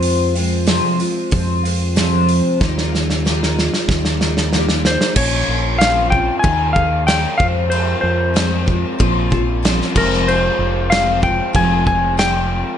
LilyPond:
<<
  \new Staff \with { instrumentName = "Electric slide guitar" } { \time 4/4 \key f \minor \tempo 4 = 94 r1 | r2. r8 c''8 | des''4 f''8 g''8 aes''8 f''8 g''8 f''8 | c''8 c''2 r4 bes'8 |
c''4 f''8 g''8 aes''8 aes''8 g''4 | }
  \new Staff \with { instrumentName = "Twelve-string acoustic guitar" } { \time 4/4 \key f \minor <f, c f aes c' f'>8 <f aes c' f'>8 <f, c f aes c' f'>8 <f aes c' f'>8 <f aes c' f'>8 <f aes c' f'>8 <f, c f aes c' f'>4 | <ees g bes ees' f'>8 <bes ees' f'>8 <ees g bes ees' f'>8 <bes ees' f'>8 <g bes ees' f'>8 <bes ees' f'>8 <ees g bes ees' f'>4 | <bes, f des' f'>4 <f c' des' f'>8 <c' des' f'>8 <ees bes ees' aes'>8 <bes ees' aes'>8 <ees bes ees' aes'>8 <f, c f aes c' g'>8~ | <f, c f aes c' g'>4 <f aes c' g'>8 <f aes c' g'>8 <f c' des' f'>8 <c' des' f'>8 <f c' des' f'>8 <f, c f aes c' g'>8~ |
<f, c f aes c' g'>4 <f aes c' g'>8 <f aes c' g'>8 <f aes c'>8 <f aes c'>8 <f aes c' g'>4 | }
  \new Staff \with { instrumentName = "Fingered electric bass" } { \clef bass \time 4/4 \key f \minor f,4. r8 f,2 | ees,2 ees,2 | bes,,8 bes,,4. ees,4. f,8~ | f,8 f,4. bes,,4. f,,8~ |
f,,8 f,,4. f,,2 | }
  \new DrumStaff \with { instrumentName = "Drums" } \drummode { \time 4/4 hho8 hho8 <hho sn>8 hho8 <hho bd>8 hho8 <hho sn>8 hho8 | <bd sn>16 sn16 sn16 sn16 sn16 sn16 sn16 sn16 <bd sn>16 sn16 sn16 sn16 sn16 sn16 sn16 sn16 | <cymc bd>4 <cymc sn>8 bd8 <cymc bd>8 bd8 <cymc sn>8 bd8 | cymc4 <cymc sn>8 bd8 <cymc bd>8 bd8 <cymc sn>16 sn16 <cymc bd>16 sn16 |
cymc4 <cymc sn>8 bd8 <cymc bd>8 bd8 <cymc sn>4 | }
>>